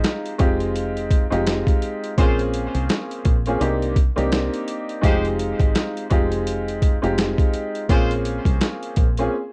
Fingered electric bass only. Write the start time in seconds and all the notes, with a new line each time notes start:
0.40 F1
1.32 F1
2.18 A#1
2.75 C2
3.26 A#1
3.61 C2
4.18 C2
5.03 F1
5.60 G#1
6.11 F1
7.03 F1
7.89 A#1
8.45 C2
8.97 A#1